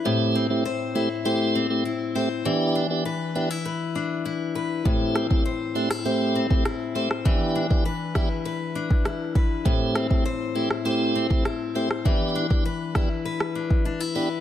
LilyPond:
<<
  \new Staff \with { instrumentName = "Steel-string acoustic guitar" } { \time 4/4 \key e \minor \tempo 4 = 100 a,8 c'8 c''8 e'8 c''8 c'8 e'8 c''8 | e8 d'8 b'8 d'16 e'16 b'8 d'8 e'8 b'8 | a,8 c'8 c''8 d'16 e'16 c''8 c'8 e'8 c''8 | e8 d'8 b'8 e'8 b'8 d'8 e'8 b'8 |
a,8 c'8 c''8 e'8 c''8 c'8 e'8 c''8 | e8 d'8 b'8 e'8 b'8 d'8 d'16 e'16 b'8 | }
  \new Staff \with { instrumentName = "Tonewheel organ" } { \time 4/4 \key e \minor <a c' e' g'>8. <a c' e' g'>16 r8 <a c' e' g'>16 r16 <a c' e' g'>8. <a c' e' g'>16 r8 <a c' e' g'>16 r16 | <b d' e' g'>8. <b d' e' g'>16 r8 <b d' e' g'>16 r2 r16 | <a c' e' g'>8. <a c' e' g'>16 r8 <a c' e' g'>16 r16 <a c' e' g'>8. <a c' e' g'>16 r8 <a c' e' g'>16 r16 | <b d' e' g'>8. <b d' e' g'>16 r8 <b d' e' g'>16 r2 r16 |
<a c' e' g'>8. <a c' e' g'>16 r8 <a c' e' g'>16 r16 <a c' e' g'>8. <a c' e' g'>16 r8 <a c' e' g'>16 r16 | <b d' e' g'>8. <b d' e' g'>16 r8 <b d' e' g'>16 r4. r16 <b d' e' g'>16 r16 | }
  \new DrumStaff \with { instrumentName = "Drums" } \drummode { \time 4/4 r4 r4 r4 r4 | r4 r4 r4 r4 | bd8 ss16 bd16 r8. ss16 r8. bd16 ss8. ss16 | bd8. bd16 r8 <bd ss>8 r8. bd16 ss8 bd8 |
bd8 ss16 bd16 r8. ss16 r8. bd16 ss8. ss16 | bd8. bd16 r8 <bd ss>8 r16 ss8 bd16 r4 | }
>>